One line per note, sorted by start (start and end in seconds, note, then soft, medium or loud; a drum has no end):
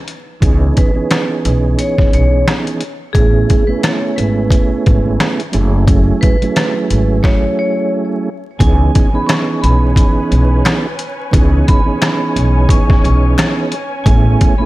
0.08 closed hi-hat medium
0.40 0.70 C#2 loud
0.40 0.90 E3 medium
0.40 0.91 B3 medium
0.40 0.91 C#4 medium
0.40 0.91 D#4 medium
0.40 0.92 G#4 loud
0.40 kick loud
0.40 closed hi-hat medium
0.77 1.75 B4 medium
0.77 kick medium
0.77 closed hi-hat medium
0.94 1.08 E3 medium
0.94 1.09 B3 medium
0.94 1.09 C#4 medium
0.94 1.10 D#4 medium
0.94 1.11 G#4 loud
1.09 2.83 E3 medium
1.09 2.83 B3 medium
1.09 2.83 C#4 medium
1.09 2.84 D#4 medium
1.09 2.84 G#4 medium
1.09 cross-stick medium
1.09 snare loud
1.09 closed hi-hat loud
1.45 1.73 B1 medium
1.45 closed hi-hat medium
1.79 2.09 C#5 medium
1.79 closed hi-hat medium
1.98 kick loud
1.98 snare soft
2.13 2.41 B1 medium
2.13 2.44 C#5 medium
2.13 closed hi-hat medium
2.48 cross-stick medium
2.48 snare loud
2.48 closed hi-hat medium
2.67 closed hi-hat soft
2.81 closed hi-hat medium
3.13 3.43 A1 loud
3.13 3.64 A3 medium
3.13 3.64 B3 medium
3.13 3.64 C#4 medium
3.13 3.65 E4 medium
3.13 3.65 G#4 loud
3.13 kick loud
3.13 closed hi-hat medium
3.50 kick medium
3.50 closed hi-hat medium
3.67 3.80 A3 medium
3.67 3.81 B3 medium
3.67 3.81 C#4 medium
3.67 3.82 E4 medium
3.67 3.83 G#4 loud
3.67 3.81 B4 medium
3.81 5.41 A3 medium
3.81 5.42 B3 medium
3.81 5.42 C#4 medium
3.81 5.42 E4 medium
3.81 5.43 G#4 medium
3.81 4.14 C#5 medium
3.81 cross-stick loud
3.81 snare loud
3.81 closed hi-hat loud
4.16 4.46 G#1 medium
4.16 5.35 B4 medium
4.16 closed hi-hat medium
4.50 kick medium
4.50 closed hi-hat loud
4.86 5.14 G#1 medium
4.86 kick loud
4.86 closed hi-hat medium
5.20 cross-stick medium
5.20 snare loud
5.20 closed hi-hat medium
5.40 closed hi-hat medium
5.52 6.10 F#1 loud
5.52 5.84 F#3 medium
5.52 5.85 A3 medium
5.52 5.85 C#4 medium
5.52 5.85 E4 medium
5.52 5.86 G#4 loud
5.52 closed hi-hat medium
5.86 6.36 F#3 medium
5.86 6.36 A3 medium
5.86 6.37 C#4 medium
5.86 6.37 E4 medium
5.86 6.37 G#4 loud
5.86 kick loud
5.86 closed hi-hat medium
6.21 7.20 B4 medium
6.21 kick medium
6.21 closed hi-hat medium
6.42 6.54 F#3 medium
6.42 6.55 A3 medium
6.42 6.56 C#4 medium
6.42 6.56 E4 medium
6.42 6.57 G#4 loud
6.42 closed hi-hat soft
6.55 8.28 F#3 medium
6.55 8.29 A3 medium
6.55 8.29 C#4 medium
6.55 8.29 E4 medium
6.55 8.30 G#4 medium
6.55 cross-stick loud
6.55 snare loud
6.55 closed hi-hat loud
6.91 7.18 G#1 medium
6.91 closed hi-hat medium
7.23 7.54 C#5 medium
7.23 kick loud
7.23 snare medium
7.59 7.89 C#5 medium
8.59 8.89 C#2 loud
8.59 9.09 E3 medium
8.59 9.09 B3 medium
8.59 14.65 C#4 medium
8.59 9.09 C#4 medium
8.59 9.10 D#4 medium
8.59 9.10 G#4 loud
8.59 14.01 B4 medium
8.59 14.65 C#5 medium
8.59 9.10 G#5 loud
8.59 14.65 G#5 medium
8.59 kick loud
8.59 closed hi-hat medium
8.95 kick medium
8.95 closed hi-hat medium
9.13 9.24 E3 loud
9.13 9.25 B3 medium
9.13 9.26 C#4 medium
9.13 9.26 D#4 medium
9.13 9.27 G#4 loud
9.13 9.27 B5 medium
9.25 10.86 E3 medium
9.25 10.86 B3 medium
9.25 10.87 C#4 medium
9.25 10.87 D#4 medium
9.25 10.87 G#4 loud
9.25 9.58 C#6 medium
9.25 finger snap medium
9.25 snare loud
9.25 closed hi-hat loud
9.30 cross-stick loud
9.61 9.91 B1 medium
9.61 10.80 B5 medium
9.61 closed hi-hat medium
9.96 kick medium
9.96 closed hi-hat loud
10.31 10.59 B1 loud
10.31 closed hi-hat medium
10.65 finger snap medium
10.65 cross-stick medium
10.65 snare loud
10.65 closed hi-hat medium
10.99 closed hi-hat medium
11.31 11.61 C#2 loud
11.31 11.81 E3 medium
11.31 11.81 B3 medium
11.31 11.82 C#4 medium
11.31 11.82 D#4 medium
11.31 11.82 G#4 loud
11.31 kick loud
11.31 closed hi-hat medium
11.68 12.66 B5 medium
11.68 kick medium
11.68 closed hi-hat medium
11.84 11.99 E3 medium
11.84 11.99 B3 medium
11.84 12.00 C#4 medium
11.84 12.01 D#4 medium
11.84 12.02 G#4 loud
12.00 13.74 E3 medium
12.00 13.74 B3 medium
12.00 13.74 C#4 medium
12.00 13.74 D#4 medium
12.00 13.75 G#4 loud
12.00 finger snap medium
12.00 cross-stick loud
12.00 snare loud
12.00 closed hi-hat loud
12.36 12.64 B1 medium
12.36 closed hi-hat medium
12.69 13.00 C#6 medium
12.69 kick medium
12.69 closed hi-hat loud
12.90 kick loud
12.90 snare soft
13.04 13.32 B1 loud
13.04 13.35 C#6 medium
13.04 closed hi-hat medium
13.38 finger snap medium
13.38 cross-stick medium
13.38 snare loud
13.38 closed hi-hat medium
13.72 closed hi-hat medium
14.04 14.34 A1 loud
14.04 14.55 A3 loud
14.04 14.65 A3 medium
14.04 14.55 B3 medium
14.04 14.55 C#4 medium
14.04 14.55 E4 medium
14.04 14.56 G#4 loud
14.04 14.56 G#5 loud
14.04 kick loud
14.04 closed hi-hat medium
14.41 kick medium
14.41 closed hi-hat medium
14.58 14.65 A3 loud
14.58 14.65 B3 medium
14.58 14.65 C#4 medium
14.58 14.65 E4 medium
14.58 14.65 G#4 loud
14.58 14.65 B5 medium